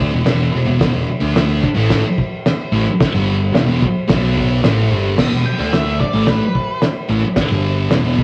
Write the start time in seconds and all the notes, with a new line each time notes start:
Already playing: D3 A3 D4
0.12 E1 E2 B2
0.25 E1 E2 B2 E3, snare, crash
0.52 E1 E2 B2
0.66 E1 E2 B2
0.79 E1 E2 B2, kick, snare, crash
0.94 E1 E2 B2
1.08 muted distorted electric guitar stroke, muted picked electric bass stroke
1.20 D2 D3 A3 D4
1.36 snare, crash
1.62 muted distorted electric guitar stroke, muted picked electric bass stroke, kick
1.75 A1 A2 E3 A3
1.90 kick, snare, crash
2.18 kick
2.46 snare, crash
2.72 A1 A2 E3
2.87 muted distorted electric guitar stroke, muted picked electric bass stroke
3.01 kick, snare, crash
3.14 G1 G2 D3 G3
3.54 E1 E2 B2, snare, crash
3.66 E1 E2 B2
3.81 muted distorted electric guitar stroke, muted picked electric bass stroke, kick
4.08 B1 B2 F#3 B3, kick, snare, crash
4.37 kick
4.62 A1 A2 E3 A3, snare, crash
4.89 G1 G2 D3 G3
5.17 E1 E2 B2, kick, snare, crash
5.31 E1 E2 B2
5.45 G5, muted distorted electric guitar stroke, muted picked electric bass stroke
5.57 D2 D3 A3 D4
5.73 E5, snare, crash
6.00 D5, muted distorted electric guitar stroke, muted picked electric bass stroke, kick
6.13 A1 A2 E3 A3
6.27 B4, kick, snare, crash
6.55 kick
6.82 snare, crash
7.09 A1 A2 E3
7.23 muted picked electric bass stroke, muted distorted electric guitar stroke
7.36 kick, snare, crash
7.50 G1 G2 D3 G3
7.91 E1 E2 B2, snare, crash
8.04 E1 E2 B2
8.17 muted distorted electric guitar stroke, muted picked electric bass stroke, kick